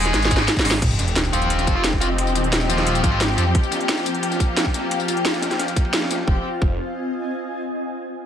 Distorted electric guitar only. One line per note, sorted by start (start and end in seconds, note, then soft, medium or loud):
0.00 0.37 G#3 medium
0.00 0.37 D#4 medium
0.00 0.37 G#4 medium
0.39 0.48 G#3 medium
0.39 0.48 D#4 medium
0.39 0.48 G#4 loud
0.65 0.70 G#3 medium
0.65 0.70 D#4 medium
0.65 0.70 G#4 loud
1.33 1.74 F3 medium
1.33 1.74 C4 medium
1.33 1.74 F4 medium
1.76 1.84 F3 medium
1.76 1.84 C4 medium
1.76 1.84 F4 loud
2.01 2.07 F3 medium
2.01 2.07 C4 medium
2.01 2.07 F4 loud
2.69 3.10 F3 medium
2.69 3.10 C4 medium
2.69 3.10 F4 medium
3.12 3.21 F3 medium
3.12 3.21 C4 medium
3.12 3.21 F4 loud
3.38 3.43 F3 medium
3.38 3.43 C4 medium
3.38 3.43 F4 medium